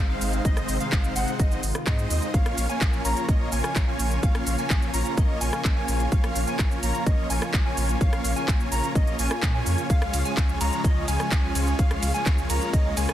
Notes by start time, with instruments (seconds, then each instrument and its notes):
Already playing: sub bass G#1, analog synth pad C3 D#3 G#3 D#4
0.09 supersaw synth G#3 C4 D#4 C5 F5, digital synth lead F5
0.21 sub bass G#1, open hi-hat, shaker
0.33 closed hi-hat, shaker
0.45 sub bass G#1, supersaw synth G#3 C4 D#4 C5 D#5, analog synth pad F4, digital synth lead D#5, kick, closed hi-hat, shaker
0.57 cross-stick, closed hi-hat, shaker
0.69 sub bass G#1, open hi-hat, shaker
0.80 supersaw synth G#3 C4 D#4 C5 F5, digital synth lead F5, closed hi-hat, shaker
0.92 sub bass G#1, kick, clap, closed hi-hat, shaker
1.04 closed hi-hat, shaker
1.16 sub bass G#1, supersaw synth G#3 C4 D#4 C5 F#5, digital synth lead F#5, open hi-hat, shaker
1.28 closed hi-hat, shaker
1.39 sub bass G#1, supersaw synth G#3 C4 D#4 C5 D#5, digital synth lead D#5, kick, closed hi-hat, shaker
1.51 shaker
1.63 sub bass G#1, open hi-hat, shaker
1.75 cross-stick, closed hi-hat, shaker
1.87 sub bass G#2, supersaw synth G#3 C4 D#4 C5 D#5, digital synth lead D#5, kick, clap, closed hi-hat, shaker
1.99 closed hi-hat, shaker
2.10 sub bass D#2, open hi-hat, shaker
2.22 closed hi-hat, shaker
2.34 sub bass A#1, analog synth pad C#3 F3 A#3, supersaw synth A#3 C#4 F4 C#5 F5, digital synth lead F5, kick, closed hi-hat, shaker
2.46 cross-stick, closed hi-hat
2.58 sub bass A#1, open hi-hat, shaker
2.69 supersaw synth A#3 C#4 F4 C#5 G#5, digital synth lead G#5, closed hi-hat, shaker
2.81 sub bass A#1, kick, clap, closed hi-hat, shaker
2.93 shaker
3.05 sub bass A#1, supersaw synth A#3 C#4 F4 C#5 A#5, digital synth lead A#5, open hi-hat, shaker
3.17 closed hi-hat, shaker
3.29 sub bass A#1, supersaw synth A#3 C#4 F4 C#5 D#5, digital synth lead D#5, kick, closed hi-hat, shaker
3.52 sub bass A#1, supersaw synth A#3 C#4 F4 C#5 G#5, digital synth lead G#5, open hi-hat, shaker
3.64 cross-stick, closed hi-hat, shaker
3.76 sub bass A#1, kick, clap, closed hi-hat, shaker
3.88 supersaw synth A#3 C#4 F4 C#5 G#5, digital synth lead G#5
3.99 sub bass A#1, open hi-hat, shaker
4.11 closed hi-hat, shaker
4.23 sub bass A#1, supersaw synth A#3 C#4 F4 C#5 F5, digital synth lead F5, kick, closed hi-hat, shaker
4.35 cross-stick, closed hi-hat
4.47 sub bass A#1, open hi-hat, shaker
4.58 supersaw synth A#3 C#4 F4 C#5 G#5, digital synth lead G#5, closed hi-hat, shaker
4.70 sub bass A#1, kick, clap, closed hi-hat, shaker
4.82 shaker
4.94 sub bass A#1, supersaw synth A#3 C#4 F4 C#5 A#5, digital synth lead A#5, open hi-hat, shaker
5.06 closed hi-hat, shaker
5.17 sub bass A#1, supersaw synth A#3 C#4 F4 C#5 D#5, digital synth lead D#5, kick, closed hi-hat, shaker
5.41 sub bass A#1, supersaw synth A#3 C#4 F4 C#5 G#5, digital synth lead G#5, open hi-hat, shaker
5.53 cross-stick, closed hi-hat, shaker
5.65 sub bass A#1, kick, clap, closed hi-hat, shaker
5.76 supersaw synth A#3 C#4 F4 C#5 G#5, digital synth lead G#5
5.88 sub bass A#1, open hi-hat, shaker
6.00 closed hi-hat, shaker
6.12 sub bass A#1, supersaw synth A#3 C#4 F4 C#5 F5, digital synth lead F5, kick, closed hi-hat, shaker
6.24 cross-stick, closed hi-hat
6.36 sub bass A#1, open hi-hat, shaker
6.47 supersaw synth A#3 C#4 F4 C#5 G#5, digital synth lead G#5, closed hi-hat, shaker
6.59 sub bass A#1, kick, clap, closed hi-hat, shaker
6.71 shaker
6.83 sub bass A#1, supersaw synth A#3 C#4 F4 C#5 A#5, digital synth lead A#5, open hi-hat, shaker
6.95 closed hi-hat, shaker
7.06 sub bass A#1, supersaw synth A#3 C#4 F4 C#5 D#5, digital synth lead D#5, kick, closed hi-hat, shaker
7.30 sub bass A#1, supersaw synth A#3 C#4 F4 C#5 G#5, digital synth lead G#5, open hi-hat, shaker
7.42 cross-stick, closed hi-hat, shaker
7.54 sub bass A#1, kick, clap, closed hi-hat, shaker
7.65 supersaw synth A#3 C#4 F4 C#5 G#5, digital synth lead G#5
7.77 sub bass A#1, open hi-hat, shaker
7.89 closed hi-hat, shaker
8.01 sub bass A#1, supersaw synth A#3 C#4 F4 C#5 F5, digital synth lead F5, kick, closed hi-hat, shaker
8.13 cross-stick, closed hi-hat
8.25 sub bass A#1, open hi-hat, shaker
8.36 supersaw synth A#3 C#4 F4 C#5 G#5, digital synth lead G#5, closed hi-hat, shaker
8.48 sub bass A#1, kick, clap, closed hi-hat, shaker
8.60 shaker
8.72 sub bass A#1, supersaw synth A#3 C#4 F4 C#5 A#5, digital synth lead A#5, open hi-hat, shaker
8.84 closed hi-hat, shaker
8.95 sub bass A#1, supersaw synth A#3 C#4 F4 C#5 D#5, digital synth lead D#5, kick, closed hi-hat, shaker
9.07 closed hi-hat
9.19 sub bass A#1, supersaw synth A#3 C#4 F4 C#5 G#5, digital synth lead G#5, open hi-hat, shaker
9.31 cross-stick, closed hi-hat, shaker
9.43 sub bass A#2, kick, clap, closed hi-hat, shaker
9.54 supersaw synth A#3 C#4 F4 C#5 G#5, digital synth lead G#5
9.66 sub bass F2, open hi-hat, shaker
9.78 closed hi-hat, shaker
9.90 sub bass C#2, analog synth pad C#3 F3 G#3 F4, supersaw synth G#3 C#4 F4 C#5 F5, digital synth lead F5, kick, closed hi-hat, ride, shaker
10.02 cross-stick, closed hi-hat
10.14 sub bass C#2, open hi-hat, ride, shaker
10.25 supersaw synth G#3 C#4 F4 C#5 G#5, digital synth lead G#5, closed hi-hat, shaker
10.37 sub bass C#2, kick, clap, closed hi-hat, ride, shaker
10.49 shaker
10.61 sub bass C#2, supersaw synth G#3 C#4 F4 C#5 A#5, digital synth lead A#5, open hi-hat, ride, shaker
10.73 closed hi-hat, shaker
10.84 sub bass C#2, supersaw synth G#3 C#4 F4 C#5 D#5, digital synth lead D#5, kick, closed hi-hat, ride, shaker
11.08 sub bass C#2, supersaw synth G#3 C#4 F4 C#5 G#5, digital synth lead G#5, open hi-hat, ride, shaker
11.20 cross-stick, closed hi-hat, shaker
11.32 sub bass C#2, kick, clap, closed hi-hat, ride, shaker
11.43 supersaw synth G#3 C#4 F4 C#5 G#5, digital synth lead G#5
11.55 sub bass C#2, open hi-hat, ride, shaker
11.67 closed hi-hat, shaker
11.79 sub bass C#2, supersaw synth G#3 C#4 F4 C#5 F5, analog synth pad A#3, digital synth lead F5, kick, closed hi-hat, ride, shaker
11.91 cross-stick, closed hi-hat
12.03 sub bass C#2, open hi-hat, ride, shaker
12.14 supersaw synth G#3 C#4 F4 C#5 G#5, digital synth lead G#5, closed hi-hat, shaker
12.26 sub bass C#2, kick, clap, closed hi-hat, ride, shaker
12.38 shaker
12.50 sub bass C#2, supersaw synth G#3 C#4 F4 C#5 A#5, digital synth lead A#5, open hi-hat, ride, shaker
12.62 closed hi-hat, shaker
12.73 sub bass C#2, supersaw synth G#3 C#4 F4 C#5 D#5, digital synth lead D#5, kick, closed hi-hat, ride, shaker
12.97 sub bass C#2, supersaw synth G#3 C#4 F4 C#5 G#5, digital synth lead G#5, open hi-hat, ride, shaker
13.09 cross-stick, closed hi-hat, shaker